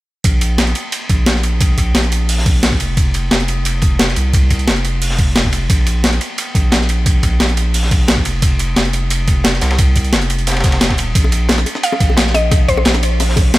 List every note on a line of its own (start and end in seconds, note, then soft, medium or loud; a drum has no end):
0.24 0.74 A#1 loud
0.24 kick loud
0.24 closed hi-hat medium
0.24 ride medium
0.41 closed hi-hat medium
0.41 ride medium
0.58 snare loud
0.58 closed hi-hat medium
0.58 ride medium
0.67 closed hi-hat soft
0.75 closed hi-hat medium
0.75 ride medium
0.92 closed hi-hat medium
0.92 ride medium
1.09 1.93 A#1 medium
1.09 kick loud
1.09 closed hi-hat medium
1.09 ride medium
1.26 snare loud
1.26 closed hi-hat medium
1.26 ride medium
1.35 snare soft
1.43 closed hi-hat medium
1.43 ride medium
1.61 kick loud
1.61 closed hi-hat medium
1.61 ride medium
1.78 kick medium
1.78 closed hi-hat medium
1.78 ride medium
1.95 2.79 A#1 loud
1.95 snare loud
1.95 closed hi-hat medium
1.95 ride medium
2.04 closed hi-hat soft
2.04 ride soft
2.12 closed hi-hat medium
2.12 ride medium
2.29 closed hi-hat medium
2.29 open hi-hat medium
2.38 snare medium
2.46 kick loud
2.46 closed hi-hat medium
2.46 ride medium
2.63 snare loud
2.63 closed hi-hat medium
2.63 ride medium
2.72 kick medium
2.72 ride soft
2.80 3.30 F1 medium
2.80 closed hi-hat medium
2.80 ride medium
2.97 kick loud
2.97 closed hi-hat medium
2.97 ride medium
3.14 closed hi-hat medium
3.14 ride medium
3.31 4.15 F1 loud
3.31 snare loud
3.31 closed hi-hat medium
3.31 ride medium
3.40 closed hi-hat soft
3.48 closed hi-hat medium
3.48 ride medium
3.65 closed hi-hat medium
3.65 ride medium
3.82 kick loud
3.82 closed hi-hat medium
3.82 ride medium
3.99 snare loud
3.99 closed hi-hat medium
3.99 ride medium
4.08 snare soft
4.16 4.69 C2 loud
4.16 closed hi-hat medium
4.16 ride medium
4.33 kick loud
4.33 closed hi-hat medium
4.33 ride medium
4.50 kick medium
4.50 closed hi-hat medium
4.50 ride medium
4.59 closed hi-hat soft
4.67 5.34 F1 loud
4.67 snare loud
4.67 closed hi-hat medium
4.67 ride medium
4.76 closed hi-hat soft
4.76 ride soft
4.85 closed hi-hat medium
4.85 ride medium
5.02 closed hi-hat medium
5.02 open hi-hat medium
5.10 snare medium
5.19 kick loud
5.19 closed hi-hat medium
5.19 ride medium
5.36 5.68 F1 loud
5.36 snare loud
5.36 closed hi-hat medium
5.36 ride medium
5.44 kick medium
5.44 ride soft
5.52 closed hi-hat medium
5.52 ride medium
5.70 6.20 A#1 medium
5.70 kick loud
5.70 closed hi-hat medium
5.70 ride medium
5.86 closed hi-hat medium
5.86 ride medium
6.04 snare loud
6.04 closed hi-hat medium
6.04 ride medium
6.13 closed hi-hat soft
6.21 closed hi-hat medium
6.21 ride medium
6.38 closed hi-hat medium
6.38 ride medium
6.55 7.39 A#1 medium
6.55 kick loud
6.55 closed hi-hat medium
6.55 ride medium
6.72 snare loud
6.72 closed hi-hat medium
6.72 ride medium
6.81 snare soft
6.89 closed hi-hat medium
6.89 ride medium
7.06 kick loud
7.06 closed hi-hat medium
7.06 ride medium
7.23 kick medium
7.23 closed hi-hat medium
7.23 ride medium
7.40 8.24 A#1 loud
7.40 snare loud
7.40 closed hi-hat medium
7.40 ride medium
7.49 closed hi-hat soft
7.49 ride soft
7.57 closed hi-hat medium
7.57 ride medium
7.74 closed hi-hat medium
7.74 open hi-hat medium
7.83 snare medium
7.91 kick loud
7.91 closed hi-hat medium
7.91 ride medium
8.08 snare loud
8.08 closed hi-hat medium
8.08 ride medium
8.17 kick medium
8.17 ride soft
8.25 8.75 F1 medium
8.25 closed hi-hat medium
8.25 ride medium
8.42 kick loud
8.42 closed hi-hat medium
8.42 ride medium
8.59 closed hi-hat medium
8.59 ride medium
8.76 9.60 F1 loud
8.76 snare loud
8.76 closed hi-hat medium
8.76 ride medium
8.85 closed hi-hat soft
8.93 closed hi-hat medium
8.93 ride medium
9.10 closed hi-hat medium
9.10 ride medium
9.28 kick loud
9.28 closed hi-hat medium
9.28 ride medium
9.44 snare loud
9.44 closed hi-hat medium
9.44 ride medium
9.53 snare soft
9.61 10.15 C2 loud
9.61 snare medium
9.61 closed hi-hat medium
9.61 ride medium
9.71 snare loud
9.71 ride medium
9.79 kick loud
9.79 closed hi-hat medium
9.79 ride medium
9.96 kick medium
9.96 closed hi-hat medium
9.96 ride medium
10.04 closed hi-hat soft
10.13 10.63 F1 loud
10.13 snare loud
10.13 closed hi-hat medium
10.13 ride medium
10.22 closed hi-hat soft
10.22 ride soft
10.30 closed hi-hat medium
10.30 ride medium
10.39 closed hi-hat soft
10.47 snare medium
10.47 closed hi-hat medium
10.47 ride medium
10.51 snare medium
10.51 ride medium
10.56 snare medium
10.56 ride medium
10.60 10.97 F1 medium
10.60 kick loud
10.60 snare loud
10.60 closed hi-hat medium
10.60 ride medium
10.64 snare loud
10.64 ride medium
10.72 snare medium
10.72 ride medium
10.81 snare loud
10.81 closed hi-hat medium
10.81 ride medium
10.89 kick medium
10.89 snare medium
10.89 ride medium
10.98 11.14 D#1 medium
10.98 closed hi-hat medium
10.98 ride medium
11.15 11.65 A#1 loud
11.15 kick loud
11.15 closed hi-hat medium
11.15 ride medium
11.24 high bongo soft
11.32 closed hi-hat medium
11.32 ride medium
11.49 snare loud
11.49 closed hi-hat loud
11.49 ride medium
11.49 high bongo medium
11.58 snare medium
11.58 closed hi-hat soft
11.66 closed hi-hat medium
11.66 ride medium
11.66 high bongo soft
11.75 snare soft
11.83 12.04 F5 medium
11.83 closed hi-hat medium
11.83 ride medium
11.92 high bongo medium
12.00 12.84 A#1 medium
12.00 kick loud
12.00 closed hi-hat medium
12.00 ride medium
12.10 high bongo soft
12.17 snare loud
12.17 closed hi-hat medium
12.17 ride medium
12.26 snare soft
12.34 12.67 D#5 medium
12.34 closed hi-hat medium
12.34 ride medium
12.34 high bongo medium
12.51 kick loud
12.51 closed hi-hat medium
12.51 ride medium
12.51 high bongo medium
12.68 12.74 C5 medium
12.68 kick medium
12.68 closed hi-hat medium
12.68 ride medium
12.77 12.83 C5 medium
12.77 high bongo medium
12.85 13.59 A#1 loud
12.85 snare loud
12.85 closed hi-hat medium
12.85 ride medium
12.94 snare medium
12.94 closed hi-hat soft
12.94 ride soft
12.94 high bongo medium
13.03 closed hi-hat medium
13.03 ride medium
13.20 closed hi-hat medium
13.20 open hi-hat medium
13.20 high bongo medium
13.29 snare soft
13.36 kick loud
13.36 closed hi-hat medium
13.36 ride medium
13.36 high bongo medium
13.54 snare loud
13.54 closed hi-hat medium
13.54 ride medium